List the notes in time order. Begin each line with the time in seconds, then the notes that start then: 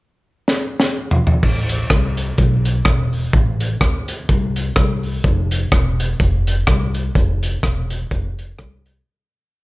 0.48 snare
0.80 snare
1.11 floor tom
1.27 floor tom
1.43 A1, kick, crash
1.69 closed hi-hat
1.90 C2, kick, cross-stick, closed hi-hat
2.17 closed hi-hat
2.38 B1, kick, closed hi-hat
2.65 closed hi-hat
2.85 E1, kick, cross-stick, closed hi-hat
3.13 open hi-hat
3.33 A1, kick, closed hi-hat
3.60 closed hi-hat
3.81 D2, kick, cross-stick, closed hi-hat
4.08 closed hi-hat
4.29 C2, kick, closed hi-hat
4.56 closed hi-hat
4.76 C2, kick, cross-stick, closed hi-hat
5.03 open hi-hat
5.24 F1, kick, closed hi-hat
5.51 closed hi-hat
5.72 E1, kick, cross-stick, closed hi-hat
6.00 closed hi-hat
6.20 F1, kick, closed hi-hat
6.47 closed hi-hat
6.67 C2, kick, cross-stick, closed hi-hat
6.94 closed hi-hat
7.15 F1, kick, closed hi-hat
7.43 closed hi-hat
7.63 E1, kick, cross-stick, closed hi-hat
7.90 closed hi-hat
8.11 F1, kick, closed hi-hat
8.39 closed hi-hat
8.59 C2, kick, cross-stick, closed hi-hat
8.86 closed hi-hat